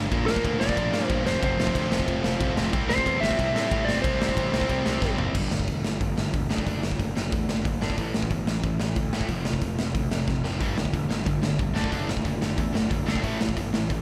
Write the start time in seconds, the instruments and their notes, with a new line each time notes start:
Already playing: distorted electric guitar G2 D3 G3 D4
0.11 picked electric bass A#1, distorted electric guitar A#2 F3 A#3, kick, ride
0.26 distorted electric guitar A#2 F3 A#3, lead electric guitar A#4, snare
0.36 kick
0.44 picked electric bass D2, distorted electric guitar A#2 F3 A#3, kick, ride
0.60 picked electric bass F1, distorted electric guitar A#2 F3 A#3, lead electric guitar D5, snare
0.69 kick
0.76 picked electric bass A#1, distorted electric guitar A#2 F3 A#3, kick, ride
0.92 picked electric bass G2, distorted electric guitar A#2 F3 A#3, snare
1.07 picked electric bass G2, distorted electric guitar A#2 F3 A#3, lead electric guitar C5, kick, ride
1.24 picked electric bass F1, distorted electric guitar F2 C3 F3, lead electric guitar C5, snare
1.40 picked electric bass F1, distorted electric guitar F2 C3 F3, kick, ride
1.44 lead electric guitar C5
1.57 picked electric bass F1, distorted electric guitar F2 C3 F3, snare
1.67 kick
1.74 picked electric bass D2, distorted electric guitar F2 C3 F3, kick, ride
1.90 picked electric bass F1, distorted electric guitar F2 C3 F3, snare
2.00 kick
2.06 picked electric bass F1, distorted electric guitar F2 C3 F3, kick, ride
2.23 picked electric bass F1, distorted electric guitar F2 C3 F3, snare
2.39 picked electric bass C2, distorted electric guitar F2 C3 F3, kick, ride
2.56 picked electric bass F1, distorted electric guitar F2 C3 F3, snare
2.73 picked electric bass C2, distorted electric guitar C3 G3 C4, kick, ride
2.88 distorted electric guitar C3 G3 C4, lead electric guitar C5, snare
2.98 kick
3.05 picked electric bass E2, distorted electric guitar C3 G3 C4, kick, ride
3.21 picked electric bass G1, distorted electric guitar C3 G3 C4, lead electric guitar E5, snare
3.31 kick
3.38 picked electric bass C2, distorted electric guitar C3 G3 C4, kick, ride
3.54 picked electric bass A2, distorted electric guitar C3 G3 C4, snare
3.70 picked electric bass A2, distorted electric guitar C3 G3 C4, kick, ride
3.85 picked electric bass G1, distorted electric guitar G3 C4, lead electric guitar D5, snare
3.89 distorted electric guitar C3
4.02 picked electric bass C2, distorted electric guitar C3 G3 C4, lead electric guitar C5, kick, ride
4.20 picked electric bass C2, distorted electric guitar C3 G3 C4, snare
4.29 kick
4.37 picked electric bass A1, distorted electric guitar C3 G3 C4, kick, ride
4.53 picked electric bass C2, distorted electric guitar C3 G3 C4, snare
4.61 kick
4.69 picked electric bass C2, distorted electric guitar C3 G3 C4, kick, ride
4.86 picked electric bass C2, distorted electric guitar C3 G3 C4, snare
5.02 picked electric bass G1, distorted electric guitar C3 G3 C4, kick, snare
5.18 picked electric bass F#1, distorted electric guitar C3 G3 C4, floor tom
5.35 picked electric bass G1, distorted electric guitar G2 D3 G3, kick, crash
5.51 picked electric bass G1, distorted electric guitar G2 D3, snare
5.59 kick
5.68 picked electric bass E1, distorted electric guitar G2 D3, kick, open hi-hat
5.84 picked electric bass G1, distorted electric guitar G2 D3, snare
6.00 picked electric bass G1, distorted electric guitar G2 D3, kick, open hi-hat
6.16 picked electric bass G1, distorted electric guitar G2 D3, snare
6.33 picked electric bass E1, distorted electric guitar G2 D3, kick, open hi-hat
6.49 picked electric bass F#1, distorted electric guitar D3 A3 D4, snare
6.58 kick
6.66 picked electric bass F#1, distorted electric guitar D3 A3 D4, kick, open hi-hat
6.82 distorted electric guitar D3 A3, snare
6.91 kick
6.99 picked electric bass F#1, distorted electric guitar D3 A3, kick, open hi-hat
7.15 picked electric bass F#1, distorted electric guitar D3 A3, snare
7.31 picked electric bass E2, distorted electric guitar D3 A3, kick, open hi-hat
7.49 picked electric bass F#1, distorted electric guitar D3 A3, snare
7.64 picked electric bass F#1, distorted electric guitar D3 A3, kick, open hi-hat
7.81 picked electric bass G1, distorted electric guitar D3 A3 D4, snare
7.90 kick
7.97 picked electric bass A1, distorted electric guitar A2 E3 A3, kick, open hi-hat
8.14 picked electric bass A1, distorted electric guitar A2 E3, snare
8.22 kick
8.30 picked electric bass G1, distorted electric guitar A2 E3, kick, open hi-hat
8.47 picked electric bass A1, distorted electric guitar A2 E3, snare
8.63 picked electric bass A1, distorted electric guitar A2 E3, kick, open hi-hat
8.79 picked electric bass A1, distorted electric guitar A2 E3, snare
8.96 picked electric bass D2, distorted electric guitar A2 E3, kick, open hi-hat
9.13 distorted electric guitar A2 E3 A3, picked electric bass A2, snare
9.21 kick
9.28 picked electric bass F1, distorted electric guitar F2 C3 F3, kick, open hi-hat
9.45 distorted electric guitar F2 C3, snare
9.54 kick
9.61 picked electric bass F1, distorted electric guitar F2 C3, kick, open hi-hat
9.79 picked electric bass F1, distorted electric guitar F2 C3, snare
9.94 picked electric bass D2, distorted electric guitar F2 C3, kick, open hi-hat
10.11 picked electric bass F1, distorted electric guitar F2 C3, snare
10.27 picked electric bass F1, distorted electric guitar F2 C3, kick, snare
10.43 picked electric bass F1, distorted electric guitar F2 C3 F3, snare
10.60 picked electric bass G1, distorted electric guitar G2 D3 G3, kick, open hi-hat
10.76 picked electric bass G1, distorted electric guitar G2 D3, snare
10.85 kick
10.93 picked electric bass E1, distorted electric guitar G2 D3, kick, open hi-hat
11.10 picked electric bass G1, distorted electric guitar G2 D3, snare
11.26 picked electric bass G1, distorted electric guitar G2 D3, kick, open hi-hat
11.42 picked electric bass G1, distorted electric guitar G2 D3, snare
11.59 picked electric bass C2, distorted electric guitar G2 D3, kick, open hi-hat
11.75 picked electric bass F#1, distorted electric guitar D3 A3 D4, snare
11.84 kick
11.92 picked electric bass F#1, distorted electric guitar D3 A3 D4, kick, open hi-hat
12.08 distorted electric guitar D3 A3, snare
12.17 kick
12.25 picked electric bass F#1, distorted electric guitar D3 A3, kick, open hi-hat
12.41 picked electric bass F#1, distorted electric guitar D3 A3, snare
12.58 picked electric bass E2, distorted electric guitar D3 A3, kick, open hi-hat
12.74 picked electric bass F#1, distorted electric guitar D3 A3, snare
12.90 picked electric bass F#1, distorted electric guitar D3 A3, kick, open hi-hat
13.06 picked electric bass F#1, distorted electric guitar D3 A3 D4, snare
13.16 kick
13.23 picked electric bass A1, distorted electric guitar A2 E3 A3, kick, open hi-hat
13.40 picked electric bass A1, distorted electric guitar A2 E3, snare
13.49 kick
13.57 picked electric bass G1, distorted electric guitar A2 E3, kick, open hi-hat
13.74 picked electric bass A1, distorted electric guitar A2 E3, snare
13.90 picked electric bass A1, distorted electric guitar A2 E3, kick, open hi-hat